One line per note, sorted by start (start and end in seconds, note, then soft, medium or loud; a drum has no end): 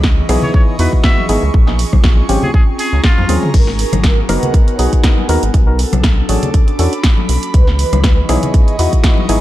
0.00 0.22 C#2 medium
0.00 1.52 E3 medium
0.00 1.54 E3 medium
0.00 1.52 B3 medium
0.00 3.50 G#4 medium
0.00 1.52 D#5 medium
0.00 2.32 D#5 medium
0.00 1.54 B5 medium
0.00 4.35 C#6 medium
0.00 snare loud
0.04 kick loud
0.29 0.38 B1 medium
0.29 0.76 B3 medium
0.29 0.76 D#4 medium
0.29 0.76 E4 medium
0.29 0.76 G#4 loud
0.29 cross-stick medium
0.29 open hi-hat loud
0.29 high conga medium
0.42 0.50 C#5 medium
0.42 low conga medium
0.54 0.63 C#5 medium
0.54 kick loud
0.79 0.88 E2 medium
0.79 1.26 B3 medium
0.79 1.26 D#4 medium
0.79 1.26 E4 medium
0.79 1.26 F#4 medium
0.79 0.90 B4 medium
0.79 open hi-hat medium
0.93 kick medium
1.04 1.26 E5 medium
1.04 kick loud
1.04 snare loud
1.18 high conga medium
1.29 1.38 G#1 medium
1.29 1.43 B3 loud
1.29 1.43 D#4 medium
1.29 1.43 E4 medium
1.29 1.43 G#4 loud
1.29 open hi-hat medium
1.43 1.50 C#2 medium
1.54 1.85 A#1 loud
1.54 3.52 C4 medium
1.54 3.52 C#4 medium
1.54 3.52 F4 medium
1.54 5.54 G#4 medium
1.54 kick loud
1.67 snare soft
1.79 open hi-hat loud
1.93 2.22 A#1 loud
1.93 kick medium
1.93 cross-stick medium
1.93 high conga medium
1.93 low conga medium
2.04 kick loud
2.04 snare loud
2.29 2.38 G#1 medium
2.29 2.50 C4 medium
2.29 2.50 C#4 medium
2.29 2.50 F4 medium
2.29 2.50 G4 medium
2.29 open hi-hat loud
2.29 high conga medium
2.43 2.50 G#4 medium
2.43 5.54 A#5 medium
2.43 low conga medium
2.54 2.63 G#4 medium
2.54 kick loud
2.79 3.01 G#4 medium
2.79 open hi-hat loud
2.93 3.00 C#2 medium
3.04 3.43 F4 medium
3.04 kick loud
3.04 snare loud
3.18 3.25 F2 medium
3.18 high conga medium
3.29 3.38 D#2 medium
3.29 3.50 C4 medium
3.29 3.50 C#4 medium
3.29 3.50 F4 medium
3.29 3.50 G#4 medium
3.29 open hi-hat loud
3.29 high tom medium
3.43 mid tom medium
3.54 3.85 G#1 medium
3.54 5.52 B3 medium
3.54 5.52 D#4 medium
3.54 5.52 F#4 medium
3.54 5.52 A#4 medium
3.54 3.69 A#4 loud
3.54 kick loud
3.54 closed hi-hat medium
3.54 crash medium
3.67 snare soft
3.79 3.94 A#4 medium
3.79 6.24 F#5 medium
3.79 open hi-hat loud
3.92 4.22 G#1 loud
3.92 cross-stick medium
3.92 closed hi-hat medium
3.92 high conga medium
3.92 low conga medium
4.04 4.19 A#4 medium
4.04 kick loud
4.04 snare loud
4.04 closed hi-hat medium
4.10 6.35 B3 medium
4.29 4.38 F#1 medium
4.29 4.76 B3 medium
4.29 4.76 D#4 medium
4.29 4.76 F#4 medium
4.29 4.76 A#4 loud
4.29 4.50 B4 loud
4.29 cross-stick medium
4.29 open hi-hat loud
4.29 high conga medium
4.43 closed hi-hat medium
4.43 low conga medium
4.54 kick loud
4.54 closed hi-hat medium
4.68 4.88 C#5 loud
4.68 closed hi-hat soft
4.79 4.88 B1 loud
4.79 5.26 B3 medium
4.79 5.26 D#4 medium
4.79 5.26 F#4 medium
4.79 5.26 G#4 medium
4.79 open hi-hat loud
4.93 kick medium
4.93 closed hi-hat medium
5.04 kick loud
5.04 snare loud
5.04 closed hi-hat medium
5.18 high conga medium
5.29 5.38 D#2 medium
5.29 5.43 B3 loud
5.29 5.43 D#4 medium
5.29 5.43 F#4 medium
5.29 5.43 A#4 loud
5.29 open hi-hat loud
5.43 5.50 G#1 medium
5.43 closed hi-hat medium
5.54 5.85 B1 loud
5.54 7.52 C#4 medium
5.54 7.52 D4 medium
5.54 7.52 F#4 medium
5.54 7.52 A4 medium
5.54 7.54 A4 medium
5.54 kick loud
5.54 closed hi-hat medium
5.79 5.94 A4 medium
5.79 open hi-hat loud
5.93 6.22 B1 loud
5.93 cross-stick medium
5.93 closed hi-hat medium
5.93 high conga loud
5.93 low conga medium
6.04 kick loud
6.04 snare loud
6.04 closed hi-hat medium
6.09 7.54 D6 medium
6.29 6.38 A1 medium
6.29 6.50 C#4 medium
6.29 6.50 D4 medium
6.29 6.50 F#4 medium
6.29 6.50 G#4 medium
6.29 open hi-hat loud
6.29 high conga medium
6.43 9.41 B5 medium
6.43 closed hi-hat medium
6.43 low conga medium
6.54 6.63 B1 medium
6.54 kick loud
6.54 closed hi-hat medium
6.68 closed hi-hat soft
6.79 6.88 E2 medium
6.79 6.93 C#4 medium
6.79 6.93 D4 medium
6.79 6.93 F#4 medium
6.79 6.94 A4 medium
6.79 6.93 A4 medium
6.79 open hi-hat loud
6.93 closed hi-hat soft
7.03 kick loud
7.03 snare loud
7.03 closed hi-hat medium
7.18 high conga medium
7.29 7.38 B1 medium
7.29 open hi-hat loud
7.43 closed hi-hat medium
7.54 7.85 C#2 loud
7.54 9.41 E3 medium
7.54 9.41 B3 medium
7.54 9.41 G#4 medium
7.54 7.69 B4 medium
7.54 9.41 D#5 medium
7.54 kick loud
7.54 closed hi-hat medium
7.67 snare soft
7.79 7.94 B4 medium
7.79 open hi-hat loud
7.84 9.41 C#6 medium
7.93 8.22 C#2 medium
7.93 cross-stick medium
7.93 closed hi-hat soft
7.93 high conga medium
7.93 low conga medium
8.02 8.19 B4 medium
8.02 9.41 D#5 medium
8.02 kick loud
8.02 snare loud
8.02 closed hi-hat medium
8.29 8.38 B1 medium
8.29 8.76 B3 medium
8.29 8.76 D#4 medium
8.29 8.76 E4 medium
8.29 8.76 G#4 loud
8.29 8.50 C#5 medium
8.29 cross-stick medium
8.29 open hi-hat loud
8.29 high conga medium
8.43 closed hi-hat medium
8.43 low conga medium
8.54 kick loud
8.54 closed hi-hat medium
8.68 8.88 D#5 loud
8.68 closed hi-hat soft
8.79 8.88 E2 loud
8.79 9.26 B3 medium
8.79 9.26 D#4 medium
8.79 9.26 E4 medium
8.79 9.26 F#4 medium
8.79 open hi-hat loud
8.93 kick medium
8.93 closed hi-hat medium
9.04 kick loud
9.04 snare loud
9.04 closed hi-hat medium
9.18 high conga medium
9.29 9.38 G#1 medium
9.29 9.41 B3 medium
9.29 9.41 D#4 medium
9.29 9.41 E4 medium
9.29 9.41 G#4 loud
9.29 open hi-hat loud